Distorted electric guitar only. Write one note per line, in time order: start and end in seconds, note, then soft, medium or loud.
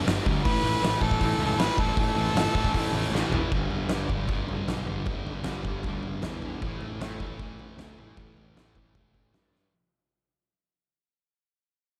0.06 0.24 G2 medium
0.06 0.25 D3 loud
0.06 0.26 G3 loud
0.25 0.43 G2 medium
0.25 0.44 D3 medium
0.25 0.44 G3 loud
0.45 0.63 A2 loud
0.45 0.64 E3 loud
0.45 0.64 A3 loud
0.63 0.81 A2 medium
0.63 0.82 E3 medium
0.63 0.83 A3 loud
0.82 1.01 A2 medium
0.82 1.02 E3 medium
0.82 1.04 A3 loud
1.01 1.18 A2 medium
1.01 1.20 E3 medium
1.01 1.20 A3 loud
1.20 1.39 A2 medium
1.20 1.41 E3 loud
1.20 1.42 A3 loud
1.40 1.57 A2 medium
1.40 1.59 E3 loud
1.40 1.59 A3 loud
1.58 1.77 A2 loud
1.58 1.78 E3 loud
1.58 1.79 A3 loud
1.78 1.95 A2 medium
1.78 1.97 E3 loud
1.78 1.97 A3 medium
1.96 2.15 A2 medium
1.96 2.16 E3 medium
1.96 2.16 A3 loud
2.16 2.34 A2 medium
2.16 2.34 E3 loud
2.16 2.35 A3 loud
2.35 2.52 A2 medium
2.35 2.53 E3 medium
2.35 2.55 A3 loud
2.54 2.73 A2 medium
2.54 2.74 E3 medium
2.54 2.74 A3 loud
2.74 2.93 A2 medium
2.74 2.94 E3 medium
2.74 2.95 A3 loud
2.94 3.12 A2 medium
2.94 3.13 E3 loud
2.94 3.14 A3 medium
3.14 3.32 A2 medium
3.14 3.33 E3 loud
3.14 3.33 A3 loud
3.33 3.51 A2 medium
3.33 3.51 E3 loud
3.33 3.51 A3 loud
3.54 3.90 G2 loud
3.54 3.91 D3 medium
3.54 3.93 G3 loud
3.91 4.10 G2 medium
3.91 4.10 D3 medium
3.91 4.12 G3 medium
4.10 4.29 G2 medium
4.10 4.29 D3 medium
4.10 4.31 G3 medium
4.30 4.67 G2 loud
4.30 4.68 D3 medium
4.30 4.69 G3 loud
4.69 4.87 G2 medium
4.69 4.89 D3 loud
4.69 4.90 G3 medium
4.88 5.05 G2 medium
4.88 5.07 D3 loud
4.88 5.07 G3 loud
5.06 5.45 G2 medium
5.06 5.46 D3 medium
5.06 5.47 G3 loud
5.46 5.64 G2 medium
5.46 5.66 D3 medium
5.46 5.66 G3 medium
5.65 5.84 G2 medium
5.65 5.85 D3 medium
5.65 5.86 G3 medium
5.85 6.22 G2 medium
5.85 6.24 D3 medium
5.85 6.25 G3 loud
6.24 6.43 G2 medium
6.24 6.43 D3 medium
6.24 6.44 G3 medium
6.44 6.61 G2 medium
6.44 6.61 D3 medium
6.44 6.61 G3 medium
6.63 7.01 A2 medium
6.63 7.03 E3 medium
6.63 7.03 A3 medium
7.02 7.20 A2 medium
7.02 7.22 E3 medium
7.02 7.22 A3 medium
7.20 7.41 A2 medium
7.20 7.42 E3 medium
7.20 7.43 A3 medium
7.41 7.78 A2 medium
7.41 7.79 E3 loud
7.41 7.80 A3 medium
7.78 7.99 A2 medium
7.78 7.99 E3 medium
7.78 8.00 A3 loud
7.99 8.15 A2 medium
7.99 8.16 E3 medium
7.99 8.18 A3 medium
8.16 8.56 A2 medium
8.16 8.56 E3 medium
8.16 8.57 A3 loud
8.57 8.76 A2 medium
8.57 8.77 E3 medium
8.57 8.77 A3 medium
8.77 8.96 A2 medium
8.77 8.96 E3 medium
8.77 8.97 A3 medium
8.97 9.32 A2 medium
8.97 9.33 E3 medium
8.97 9.34 A3 loud
9.33 9.51 A2 medium
9.33 9.52 E3 medium
9.33 9.53 A3 medium
9.52 9.70 A2 medium
9.52 9.70 E3 medium
9.52 9.71 A3 medium